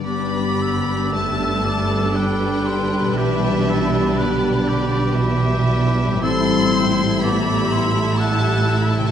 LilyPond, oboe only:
\new Staff \with { instrumentName = "Oboe" } { \time 3/4 \key g \major \tempo 4 = 60 d''4 e''8 d''8 b'4 | g'8 a'8 b'8 g'4. | a'8 c''8 d''8 e''8 fis''8 r8 | }